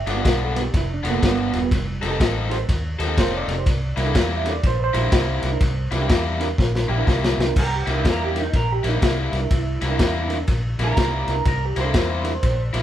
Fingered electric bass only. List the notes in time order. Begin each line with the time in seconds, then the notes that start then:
0.06 G1
0.25 B1
0.74 F1
1.04 F1
1.23 G1
1.53 E1
1.71 F1
2.02 F1
2.20 A1
2.69 D#2
2.99 D#2
3.18 F1
3.48 F1
3.66 C2
3.97 C2
4.63 A#1
4.94 A#1
5.12 C2
5.43 C2
5.61 C2
5.92 C2
6.10 E2
6.58 A#1
6.89 A#1
7.07 C2
7.38 C2
7.56 C2
7.87 C2
8.53 A#1
8.84 A#1
9.02 C2
9.33 C2
9.51 C2
9.82 C2
9.99 E2
10.48 A#1
10.79 A#1
10.97 C2
11.28 C2
11.45 C2
11.76 C2
12.43 A#1
12.74 A#1